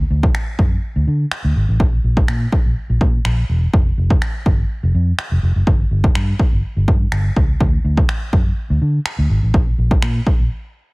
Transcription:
0.10 0.27 D2 loud
0.23 kick loud
0.35 finger snap loud
0.59 0.75 F#2 medium
0.59 kick medium
0.96 1.04 D2 loud
1.07 1.24 D3 medium
1.31 finger snap loud
1.44 1.52 D2 medium
1.56 1.65 G#1 medium
1.69 1.76 A1 medium
1.80 kick loud
2.04 2.21 A#1 loud
2.17 kick loud
2.28 2.45 A#2 loud
2.28 finger snap loud
2.52 kick medium
2.65 2.73 A#1 medium
2.90 2.97 A#1 medium
3.01 3.18 A#2 medium
3.01 kick medium
3.25 3.42 A#1 medium
3.25 finger snap loud
3.49 3.66 E1 medium
3.73 3.90 F1 medium
3.73 kick loud
3.98 4.14 F1 medium
4.10 kick loud
4.22 finger snap loud
4.46 4.63 G1 medium
4.46 kick medium
4.83 4.91 F1 medium
4.95 5.11 F2 loud
5.19 finger snap loud
5.32 5.39 F1 medium
5.43 5.52 F1 medium
5.56 5.63 F#1 medium
5.67 5.84 G1 loud
5.67 kick loud
5.91 6.08 G1 medium
6.04 kick loud
6.15 6.32 G2 loud
6.15 finger snap loud
6.39 kick medium
6.52 6.60 G1 medium
6.76 6.84 G1 medium
6.88 7.05 G2 medium
6.88 kick medium
7.12 7.29 G1 medium
7.12 finger snap loud
7.36 7.53 C#2 medium
7.36 kick loud
7.60 7.77 D2 medium
7.60 kick loud
7.85 8.01 D2 medium
7.97 kick loud
8.09 finger snap loud
8.33 8.50 F#2 medium
8.33 kick medium
8.70 8.78 D2 loud
8.82 8.98 D3 loud
9.06 finger snap loud
9.18 9.26 D2 medium
9.30 9.39 G#1 medium
9.43 9.51 A1 medium
9.54 9.71 A#1 medium
9.54 kick loud
9.78 9.95 A#1 medium
9.91 kick loud
10.02 10.19 A#2 loud
10.02 finger snap loud
10.27 kick medium
10.39 10.47 A#1 medium

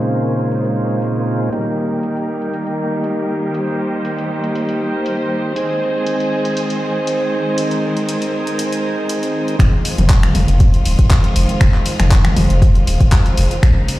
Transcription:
0.00 1.50 A#2 medium
0.00 1.49 C#3 medium
0.00 1.48 G#3 medium
0.00 1.50 C4 medium
0.00 1.50 C#4 medium
0.00 1.50 D#4 medium
0.00 1.50 F4 medium
0.00 1.51 F4 medium
0.00 1.50 G#4 medium
0.00 3.50 A#4 medium
0.00 1.49 C5 medium
0.00 closed hi-hat medium
0.15 closed hi-hat soft
0.40 closed hi-hat soft
0.52 closed hi-hat medium
0.65 closed hi-hat soft
0.90 closed hi-hat soft
1.02 closed hi-hat medium
1.52 5.52 D#3 medium
1.52 5.52 G3 medium
1.52 5.53 A#3 medium
1.52 5.52 A#3 medium
1.52 5.53 D#4 medium
1.52 5.53 G4 medium
1.52 5.52 G4 medium
1.52 closed hi-hat medium
2.03 closed hi-hat medium
2.17 closed hi-hat soft
2.42 closed hi-hat soft
2.53 closed hi-hat medium
2.67 closed hi-hat soft
3.04 closed hi-hat medium
3.53 9.55 C5 medium
3.53 closed hi-hat medium
4.05 closed hi-hat medium
4.18 closed hi-hat soft
4.44 closed hi-hat soft
4.55 closed hi-hat medium
4.69 closed hi-hat soft
5.06 closed hi-hat medium
5.56 9.55 D#3 medium
5.56 9.55 G#3 medium
5.56 9.55 C4 medium
5.56 9.56 C4 medium
5.56 9.56 D#4 medium
5.56 7.55 G#4 medium
5.56 9.56 G#4 medium
5.56 closed hi-hat medium
6.07 closed hi-hat medium
6.20 closed hi-hat soft
6.45 closed hi-hat soft
6.57 closed hi-hat medium
6.70 closed hi-hat soft
7.07 closed hi-hat medium
7.58 9.57 A#4 medium
7.58 closed hi-hat medium
7.71 closed hi-hat soft
7.97 closed hi-hat soft
8.09 closed hi-hat medium
8.22 closed hi-hat soft
8.47 closed hi-hat soft
8.59 closed hi-hat medium
8.72 closed hi-hat soft
9.09 closed hi-hat medium
9.23 closed hi-hat soft
9.48 closed hi-hat soft
9.59 9.69 F1 loud
9.59 13.59 D#3 medium
9.59 13.59 F3 medium
9.59 13.99 G#3 medium
9.59 13.99 C4 medium
9.59 13.59 F4 medium
9.59 finger snap medium
9.59 kick loud
9.59 closed hi-hat medium
9.85 open hi-hat medium
9.98 10.30 F1 medium
9.98 closed hi-hat soft
9.98 mid tom medium
10.10 kick loud
10.10 clap loud
10.10 closed hi-hat medium
10.23 finger snap medium
10.23 closed hi-hat soft
10.23 mid tom medium
10.35 10.45 F1 medium
10.35 open hi-hat loud
10.35 mid tom medium
10.48 10.80 F1 medium
10.48 closed hi-hat soft
10.60 kick loud
10.60 closed hi-hat medium
10.74 closed hi-hat soft
10.85 10.95 D#1 loud
10.85 open hi-hat medium
10.99 kick medium
10.99 closed hi-hat soft
11.11 kick loud
11.11 clap loud
11.11 closed hi-hat medium
11.24 closed hi-hat soft
11.36 11.46 F1 medium
11.36 open hi-hat loud
11.49 closed hi-hat soft
11.61 11.71 F1 loud
11.61 finger snap medium
11.61 kick loud
11.61 closed hi-hat medium
11.74 clap soft
11.86 open hi-hat medium
12.00 12.32 F1 medium
12.00 finger snap medium
12.00 closed hi-hat soft
12.00 mid tom medium
12.11 kick loud
12.11 clap loud
12.11 closed hi-hat medium
12.25 finger snap medium
12.25 closed hi-hat soft
12.25 mid tom medium
12.37 12.46 F1 medium
12.37 open hi-hat medium
12.37 mid tom medium
12.50 12.82 F1 medium
12.50 closed hi-hat soft
12.62 kick loud
12.62 closed hi-hat medium
12.75 closed hi-hat soft
12.87 12.97 D#1 loud
12.87 open hi-hat medium
13.00 kick medium
13.00 closed hi-hat soft
13.12 kick loud
13.12 clap loud
13.12 closed hi-hat medium
13.26 closed hi-hat soft
13.37 13.47 F1 medium
13.37 open hi-hat medium
13.51 closed hi-hat soft
13.63 13.72 A#1 loud
13.63 13.99 C#3 medium
13.63 13.99 A#3 medium
13.63 13.99 D#4 medium
13.63 finger snap loud
13.63 kick loud
13.63 closed hi-hat medium
13.88 open hi-hat loud

